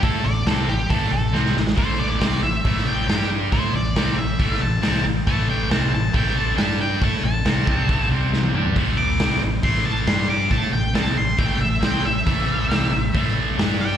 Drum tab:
HH |o---o---o-------|o---o---o---o---|o---o---o---o---|o---o---o---o---|
SD |----o-------oooo|----o----o--o---|----o----o--o---|----o-------o---|
T1 |----------------|----------------|----------------|----------------|
T2 |----------------|----------------|----------------|----------------|
FT |----------------|----------------|----------------|----------------|
BD |o-------o-------|o-------o-------|o-------o-------|o-------o-------|

HH |o---o---o-------|o---o---o---o---|o---o---o---o---|o---o---o---o---|
SD |----o-------o---|----o----o--o---|----o-------o---|----o-------o---|
T1 |-------------o--|----------------|----------------|----------------|
T2 |--------------o-|----------------|----------------|----------------|
FT |---------------o|----------------|----------------|----------------|
BD |o-----o-o-------|o-------o-------|o-------o-------|o-------o-------|